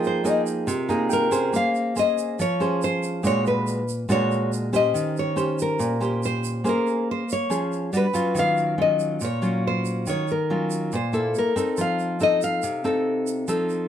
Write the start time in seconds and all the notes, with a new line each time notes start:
Already playing: F3 A#3 D#4 F4 G#4 A#4 D#5 G5
0.04 C5, shaker
0.24 A#3 D#4 G#4, shaker
0.29 D#5
0.46 shaker
0.67 C3, shaker
0.89 A#3 D#4 G#4 A#5, shaker
1.10 A#4 G5, shaker
1.31 C#4 G#4 C5, shaker
1.53 A#3 F5, shaker
1.75 shaker
1.96 C#4 G#4 C5 D#5, shaker
2.18 shaker
2.39 F3 C#5, shaker
2.60 C#4 G#4 C5, shaker
2.82 C5, shaker
3.03 shaker
3.23 A#2 G#3 D4 F#4 C#5, shaker
3.46 B4, shaker
3.67 shaker
3.89 shaker
4.09 A#2 G#3 D4 F#4 C#5, shaker
4.31 shaker
4.53 shaker
4.73 C#4 G4 C5 D#5, shaker
4.94 D#3, shaker
5.17 C#5, shaker
5.36 C#4 G4 C5, shaker
5.59 A#4, shaker
5.79 A#2, shaker
6.00 C#4 G4 C5, shaker
6.23 C5, shaker
6.44 shaker
6.64 A#3 C#4 G#4 C5, shaker
6.69 A#4
6.87 shaker
7.11 C5
7.29 C#5, shaker
7.50 F3 C#4 G#4, shaker
7.72 shaker
7.93 G3 D4 F#4, shaker
7.97 B4
8.14 F#3 C#4 F4, shaker
8.35 D#3, shaker
8.39 F5
8.57 shaker
8.78 F#3 C#4 F4 D#5
8.99 shaker
9.20 A#2, shaker
9.25 C#5
9.42 F#3 C#4 F4, shaker
9.67 C5
9.85 shaker
10.06 D#3 C#5, shaker
10.28 A#4, shaker
10.50 F#3 C#4 F4
10.71 shaker
10.92 A#2 C5, shaker
11.13 A#3 E4 A4, shaker
11.35 A#4, shaker
11.56 C4 D#4 A4, shaker
11.77 F3 F5, shaker
11.99 shaker
12.20 C4 D#4 A4 D#5, shaker
12.42 F5, shaker
12.62 C3, shaker
12.84 C4 D#4 A4, shaker
13.27 shaker
13.48 F3 C4 D#4 A4, shaker
13.69 shaker